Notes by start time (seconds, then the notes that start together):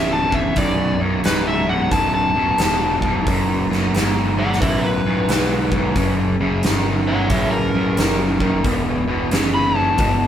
Already playing: D1 E2 C#3 E5
0.13 A5
0.31 E2 C#3 E5, kick
0.56 B0 B1 F#2 D5, kick, open hi-hat
0.99 B1 F#2
1.23 C#1 B1 G#2 B4, snare, open hi-hat
1.47 E5
1.66 B1 G#2 F#5
1.90 D1 B1 F#2 A5, kick, open hi-hat
2.14 A5
2.34 B1 F#2
2.58 E1 B1 G#2, snare, open hi-hat
3.01 B1 G#2, kick
3.26 F#1 B1 F#2, kick, open hi-hat
3.69 B1 F#2, snare
3.94 G1 B1 G#2, snare, open hi-hat
4.37 B1 G#2 D5 F#5
4.53 snare
4.60 A1 B1 F#2 B4 E5, kick, open hi-hat
4.84 B4
5.05 B1 F#2
5.29 B1 G#2, snare, open hi-hat
5.72 B1 G#2, kick
5.96 F#1 F#2 C#3, kick, open hi-hat
6.40 F#2 C#3
6.63 G1 F#2 D#3, snare, open hi-hat
7.07 F#2 D#3 C#5 F#5
7.30 A1 F#2 C#3 C#5 E5, kick, open hi-hat
7.51 A#4
7.74 F#2 C#3
7.97 F#1 F#2 D#3, snare, open hi-hat
8.40 F#2 D#3, kick
8.64 E1 E2 B2, kick, open hi-hat
9.07 E2 B2
9.31 F#1 E2 C#3, snare, open hi-hat
9.54 B5
9.74 E2 C#3 A5
9.98 G1 E2 B2, kick, open hi-hat